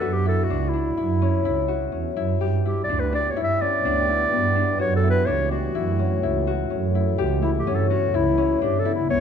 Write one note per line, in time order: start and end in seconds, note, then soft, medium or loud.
0.00 0.40 F#2 medium
0.00 2.63 B3 medium
0.00 0.50 D4 medium
0.00 0.25 E4 medium
0.00 1.68 F#4 medium
0.00 0.14 A4 medium
0.13 0.27 G4 medium
0.26 0.97 E4 medium
0.26 0.45 A4 medium
0.44 0.70 F#4 medium
0.48 0.88 C#2 medium
0.48 0.73 D4 medium
0.69 2.14 E4 medium
0.73 1.28 D4 medium
0.97 1.37 F#2 medium
0.97 1.45 E4 medium
1.22 1.92 C#4 medium
1.45 1.85 C#2 medium
1.45 2.16 E4 medium
1.68 2.47 F#4 medium
1.92 2.14 E2 medium
1.92 2.95 C#4 medium
2.16 2.38 F#2 medium
2.16 2.65 E4 medium
2.40 2.80 G2 medium
2.40 4.78 B3 medium
2.40 4.78 F#4 medium
2.40 4.76 G4 medium
2.40 4.78 G4 medium
2.65 3.36 E4 medium
2.65 2.80 G4 medium
2.84 3.01 D5 medium
2.89 3.29 D2 medium
2.89 3.12 D4 medium
2.99 3.14 B4 medium
3.13 3.68 D4 medium
3.13 3.32 D5 medium
3.30 3.43 C#5 medium
3.36 3.76 G2 medium
3.36 4.09 E4 medium
3.44 3.63 E5 medium
3.61 3.91 C#4 medium
3.61 4.80 D5 medium
3.84 4.24 D2 medium
3.84 4.55 D4 medium
4.09 5.03 E4 medium
4.32 4.72 G2 medium
4.32 7.43 B3 medium
4.55 5.26 D4 medium
4.79 5.19 F#2 medium
4.79 7.17 E3 medium
4.79 7.17 A3 medium
4.79 6.47 F#4 medium
4.79 7.17 F#4 medium
4.79 4.95 C#5 medium
4.96 5.09 A4 medium
5.03 5.74 E4 medium
5.10 5.27 B4 medium
5.26 5.67 C#2 medium
5.26 5.51 D4 medium
5.26 5.51 C#5 medium
5.51 6.05 D4 medium
5.51 6.91 F#4 medium
5.75 6.15 F#2 medium
5.75 6.23 E4 medium
5.99 6.70 C#4 medium
6.23 6.63 C#2 medium
6.23 6.95 E4 medium
6.47 7.24 F#4 medium
6.70 7.11 F#2 medium
6.70 7.67 C#4 medium
6.95 7.42 E4 medium
7.18 7.59 C#2 medium
7.18 9.20 C#3 medium
7.18 9.20 B3 medium
7.18 9.20 E4 medium
7.18 9.20 G4 medium
7.42 8.14 E4 medium
7.42 7.51 E4 medium
7.58 7.76 G4 medium
7.67 8.06 G2 medium
7.67 7.90 C#4 medium
7.75 7.89 A4 medium
7.89 8.37 C#4 medium
7.89 8.17 F#4 medium
8.14 8.54 C#2 medium
8.14 8.85 E4 medium
8.14 8.61 E4 medium
8.38 8.68 C#4 medium
8.62 9.02 G2 medium
8.62 9.20 D4 medium
8.62 8.81 G4 medium
8.79 8.94 A4 loud
8.85 9.20 E4 medium
8.95 9.09 E4 medium
9.10 9.20 C#2 medium
9.10 9.20 B3 medium
9.10 9.20 C#5 loud